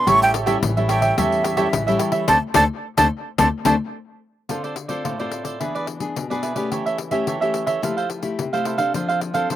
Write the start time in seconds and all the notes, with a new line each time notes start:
0.07 A1 A2 G3 C#4 E4 G4 A4 C#5 E5 C#6, pandeiro
0.22 G5, pandeiro
0.33 G4 A4 C#5 E5, pandeiro
0.46 G3 C#4 E4 G4 A4 C#5 E5, pandeiro
0.62 A1 E3, pandeiro
0.77 G3 C#4 E4 A4 C#5 E5, pandeiro
0.89 G4 A4 C#5 E5 G5, pandeiro
1.01 A4 C#5 E5, pandeiro
1.17 E2 A2 G3 C#4 E4 G4 A4 C#5 E5, pandeiro
1.32 pandeiro
1.44 G4 A4 C#5 E5, pandeiro
1.57 G3 C#4 E4 G4 A4 C#5 E5, pandeiro
1.73 A1 E3, pandeiro
1.87 G3 C#4 E4 A4 C#5 E5, pandeiro
1.99 G4 A4 C#5 E5, pandeiro
2.12 A4 C#5 E5, pandeiro
2.28 D2 A3 C4 D4 A4 C5 D5 A5, pandeiro
2.54 D2 A3 C4 D4 A4 C5 D5 A5, pandeiro
2.97 D2 A3 C4 D4 A4 C5 D5 A5, pandeiro
3.38 D2 A3 C4 D4 A4 C5 D5 A5, pandeiro
3.65 D2 A3 C4 D4 A4 C5 D5 A5, pandeiro
4.49 D3 C4 F4 A4 C5 D5, pandeiro
4.64 A4 C5 D5, pandeiro
4.76 muted cavaquinho stroke, pandeiro
4.88 C4 F4 A4 C5 D5, pandeiro
5.04 A2 F4 A4 C5 D5, pandeiro
5.19 C4 F4 A4 C5 D5, pandeiro
5.32 pandeiro
5.44 A4 C5 D5, pandeiro
5.60 E3 B3 D4 E4 G#4 B4 D5, pandeiro
5.75 G#4 B4 D5, pandeiro
5.87 muted cavaquinho stroke, pandeiro
6.00 B3 D4 G#4, pandeiro
6.16 B2, pandeiro
6.30 B3 D4 G#4 B4 D5, pandeiro
6.42 E4 G#4 B4 D5, pandeiro
6.55 A3 C#4 G4 G#4 B4 D5, pandeiro
6.71 E3 G4 A4 C#5 E5, pandeiro
6.86 A4 C#5 E5, pandeiro
6.98 pandeiro
7.11 A3 C#4 G4 A4 C#5 E5, pandeiro
7.27 E3 G4 A4 C#5 E5, pandeiro
7.41 A3 C#4 G4 A4 C#5 E5, pandeiro
7.54 pandeiro
7.66 A4 C#5 E5, pandeiro
7.82 F3 A3 E4 G4 A4 C5 F5, pandeiro
7.97 A4 C5 F5, pandeiro
8.10 muted cavaquinho stroke, pandeiro
8.22 A3 E4 G4, pandeiro
8.38 C3, pandeiro
8.53 A3 E4 G4 A4 C5 F5, pandeiro
8.65 E4 A4 C5 F5, pandeiro
8.78 C4 D4 A4 C5 F5, pandeiro
8.94 F3 D4 A4 C5 F5, pandeiro
9.08 A4 C5 F5, pandeiro
9.21 muted cavaquinho stroke, pandeiro
9.34 C4 D4 A4 C5 F5, pandeiro
9.50 F3 D4 A4 C5 F5, pandeiro